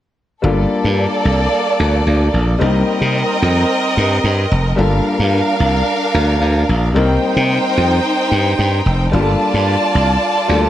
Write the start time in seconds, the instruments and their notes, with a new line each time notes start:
0.42 slap bass G1, grand piano G3 A#3 D4 F4 A4, violin section A#3 A4 D5
0.84 slap bass G2
1.25 slap bass C2
1.80 slap bass D2
2.07 slap bass D2
2.34 slap bass A#1
2.59 slap bass C2, grand piano G3 A#3 C4 D#4 A#4, violin section C4 A#4 D#5
3.01 slap bass C3
3.42 slap bass F2
3.97 slap bass G2
4.24 slap bass G2
4.51 slap bass F1
4.76 slap bass G1, grand piano G3 A#3 D4 F4 A4, violin section D4 A#4 F5
5.19 slap bass G2
5.60 slap bass C2
6.14 slap bass D2
6.42 slap bass D2
6.69 slap bass A#1
6.94 slap bass C2, grand piano G3 A#3 C4 D#4 A#4, violin section D#4 C5 G5
7.37 slap bass C3
7.77 slap bass F2
8.32 slap bass G2
8.59 slap bass G2
8.86 slap bass F1
9.12 slap bass G1, grand piano G3 A#3 D4 F4 G4, violin section F4 D5 A5
9.21 grand piano A4
9.54 slap bass G2
9.95 slap bass C2
10.48 slap bass D2, grand piano G3 A#3 D4 F4 A4